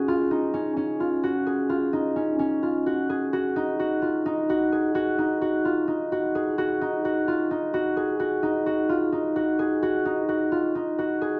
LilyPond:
\new Staff \with { instrumentName = "Harp" } { \time 7/8 \key ees \minor \tempo 4 = 129 f'8 ees'8 des'8 des'8 f'8 ges'8 aes'8 | f'8 ees'8 des'8 des'8 f'8 ges'8 aes'8 | ges'8 ees'8 ges'8 f'8 ees'8 ges'8 aes'8 | ges'8 ees'8 ges'8 f'8 ees'8 ges'8 aes'8 |
ges'8 ees'8 ges'8 f'8 ees'8 ges'8 aes'8 | ges'8 ees'8 ges'8 f'8 ees'8 ges'8 aes'8 | ges'8 ees'8 ges'8 f'8 ees'8 ges'8 aes'8 | }